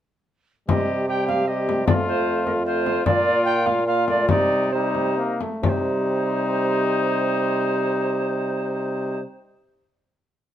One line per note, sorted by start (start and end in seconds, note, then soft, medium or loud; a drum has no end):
0.68 1.88 C3 medium
0.68 1.06 G3 soft
0.68 1.06 G4 medium
0.68 1.06 D#5 medium
0.68 frame drum medium
1.08 1.47 G3 soft
1.08 1.47 G4 medium
1.08 1.26 G5 medium
1.27 1.49 F5 medium
1.27 frame drum soft
1.47 1.86 G3 soft
1.47 1.86 G4 medium
1.47 1.86 D#5 medium
1.69 frame drum medium
1.86 3.05 F2 medium
1.86 2.64 A3 medium
1.86 2.64 F4 medium
1.86 1.92 D5 medium
1.86 frame drum medium
2.07 2.45 C5 medium
2.45 2.51 A#4 medium
2.45 frame drum soft
2.65 3.05 A3 medium
2.65 3.05 F4 medium
2.65 3.04 C5 medium
2.86 frame drum soft
3.04 4.31 A#2 medium
3.04 3.85 A#3 medium
3.04 3.85 F4 medium
3.04 3.44 D5 loud
3.04 frame drum medium
3.44 3.67 G5 loud
3.65 3.86 F5 medium
3.65 frame drum soft
3.86 4.10 A#3 medium
3.86 4.31 F4 medium
3.86 4.07 F5 medium
4.08 4.31 A3 medium
4.08 4.28 D5 medium
4.08 frame drum soft
4.28 5.40 C3 medium
4.28 4.73 G3 medium
4.28 4.73 D#4 medium
4.28 4.73 D5 medium
4.28 frame drum medium
4.72 5.14 G3 medium
4.72 5.40 D#4 medium
4.72 5.17 C5 medium
4.95 frame drum soft
5.17 5.43 A#3 medium
5.41 5.64 A3 medium
5.41 frame drum medium
5.63 9.20 C3 medium
5.63 9.21 G3 medium
5.63 9.20 D#4 medium
5.63 5.69 D5 medium
5.63 frame drum medium
5.68 9.20 C5 medium